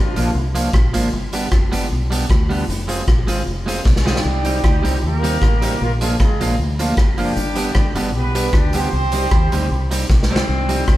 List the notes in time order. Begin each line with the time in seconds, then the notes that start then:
Already playing: G#1 F3 D4 F4
0.16 A#1 F3 A#3 D4 F4, closed hi-hat
0.35 C2
0.55 F3 A#3 D4 F4, closed hi-hat
0.73 A#1, kick, cross-stick
0.94 G#1 F3 A#3 D4 F4, closed hi-hat
1.13 G1
1.33 G3 B3 D4 G4, closed hi-hat
1.52 F1, kick, cross-stick
1.72 G1 G3 B3 D4 G4, closed hi-hat
1.91 B1
2.11 G3 B3 D4 G4, closed hi-hat
2.30 D2, kick, cross-stick
2.50 G3 B3 D4 G4, open hi-hat
2.68 F1, hi-hat pedal
2.88 G#3 C4 F4 G#4, closed hi-hat
3.08 A#1, kick, cross-stick
3.27 G#1 G#3 C4 F4 G#4, closed hi-hat
3.46 F1
3.66 G#3 C4 F4 G#4, closed hi-hat
3.85 B1, kick, snare
3.96 G#3 G#4, snare
4.05 G3 G#3 C4 D#4 F4 G4 G#4, snare
4.16 snare
4.25 C2
4.45 G3 C4 D#4 G4, closed hi-hat
4.64 D2, kick, cross-stick
4.83 C2 G3 C4 D#4 G4, closed hi-hat
5.02 D#2 A#3 G4 A#4
5.23 G3 C4 D#4 G4, closed hi-hat
5.42 A1, kick, cross-stick
5.62 G3 C4 D#4 G4, closed hi-hat
5.80 A#1 A#3 F4 A#4
6.00 F3 G#3 A#3 D4 F4 G#4, closed hi-hat
6.19 G#1 G#3 F4 G#4, kick, cross-stick
6.41 A#1 F3 A#3 D4 F4, closed hi-hat
6.58 D2
6.79 F3 A#3 D4 F4, closed hi-hat
6.97 F#1, kick, cross-stick
7.18 F3 G3 A#3 D4 F4 G4, open hi-hat
7.36 G1, hi-hat pedal
7.55 G3 B3 D4 G4, closed hi-hat
7.75 G#1, kick, cross-stick
7.95 G1 G3 B3 D4 G4, closed hi-hat
8.15 B1 B3 G4 B4
8.35 G3 B3 D4 G4, closed hi-hat
8.53 D2 G3 D4 G4, kick, cross-stick
8.73 G3 B3 C4 D4 G4 C5, closed hi-hat
8.93 C2
9.12 G3 C4 D#4 G4, closed hi-hat
9.31 D#2, kick, cross-stick
9.52 D2 G3 C4 D#4 G4, closed hi-hat
9.71 C2
9.91 G3 C4 D#4 G4, closed hi-hat
10.10 B1, kick, snare
10.23 snare
10.31 G3 C4 D#4 G4
10.36 snare
10.49 C2
10.69 G3 C4 D#4 G4, closed hi-hat
10.88 D2, kick, cross-stick